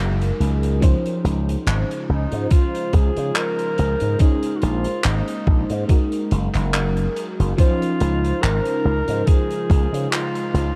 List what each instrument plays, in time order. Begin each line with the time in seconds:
Already playing: slap bass F#1, ambient pad F#3 C#4 D#4 G#4 A#4, fm electric piano G#3 D#4 F#4 A#4
0.22 closed hi-hat
0.40 slap bass C#2, closed hi-hat
0.63 closed hi-hat
0.80 ambient pad C#3 G#3 F4 C5, fm electric piano F3 C#4 D#4 C5, kick, closed hi-hat
1.06 closed hi-hat
1.24 slap bass C#2, closed hi-hat
1.49 closed hi-hat
1.66 slap bass G#1, clap, closed hi-hat
1.91 closed hi-hat
2.09 slap bass C#2, alto saxophone D#4
2.32 slap bass G#2, closed hi-hat
2.51 alto saxophone F4, kick, closed hi-hat
2.75 closed hi-hat
2.93 slap bass C#2, alto saxophone G#4, kick, closed hi-hat
3.17 slap bass C#3, closed hi-hat
3.36 alto saxophone A#4, clap, closed hi-hat
3.59 closed hi-hat
3.78 slap bass C#2, closed hi-hat
4.00 slap bass G#2, closed hi-hat
4.19 fm electric piano G#3 C#4 D#4 C5, ambient pad A#3 C#4, alto saxophone G#4, kick, closed hi-hat
4.43 closed hi-hat
4.56 alto saxophone F#4
4.61 slap bass A#1, alto saxophone F4, closed hi-hat
4.84 muted slap bass stroke, closed hi-hat
5.04 slap bass G#1, alto saxophone D#4, clap, closed hi-hat
5.28 closed hi-hat
5.47 slap bass A#1, kick
5.70 slap bass G#2, closed hi-hat
5.88 ambient pad F#3 D#4 G#4 A#4, fm electric piano G#3 D#4 F#4 A#4, kick, closed hi-hat
6.12 closed hi-hat
6.31 slap bass F#1, closed hi-hat
6.54 slap bass F#1, clap, closed hi-hat
6.74 clap, closed hi-hat
6.97 closed hi-hat
7.16 closed hi-hat
7.39 slap bass F#1, closed hi-hat
7.57 ambient pad C#3 G#3 F4 C5, fm electric piano F3 C#4 D#4 C5, alto saxophone F4, kick, closed hi-hat
7.82 closed hi-hat
8.00 slap bass C#2, closed hi-hat
8.25 closed hi-hat
8.42 slap bass G#1, alto saxophone A#4, clap, closed hi-hat
8.65 closed hi-hat
8.85 slap bass C#2
9.08 slap bass G#2, closed hi-hat
9.27 alto saxophone G#4, kick, closed hi-hat
9.51 closed hi-hat
9.70 slap bass C#2, kick, closed hi-hat
9.93 slap bass C#3, closed hi-hat
10.11 alto saxophone F4, clap, closed hi-hat
10.35 closed hi-hat
10.54 slap bass C#2, closed hi-hat